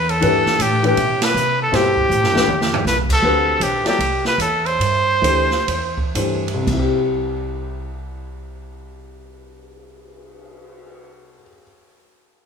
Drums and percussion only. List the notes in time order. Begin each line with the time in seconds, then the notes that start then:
0.09 ride
0.22 ride
0.46 snare
0.60 hi-hat pedal, ride
0.84 ride
0.97 ride
1.21 snare, ride
1.36 hi-hat pedal
1.73 snare, ride
1.97 kick
2.11 hi-hat pedal
2.24 snare
2.36 snare
2.48 mid tom
2.61 snare
2.74 floor tom
2.86 snare, hi-hat pedal
3.09 kick, crash
3.61 hi-hat pedal, ride
3.85 snare, ride
4.00 ride
4.25 snare
4.40 hi-hat pedal, ride
4.66 ride
4.81 ride
5.24 hi-hat pedal, ride
5.51 snare
5.68 ride
5.97 kick
6.15 hi-hat pedal, ride
6.48 ride
6.67 kick, crash
7.01 cymbal swell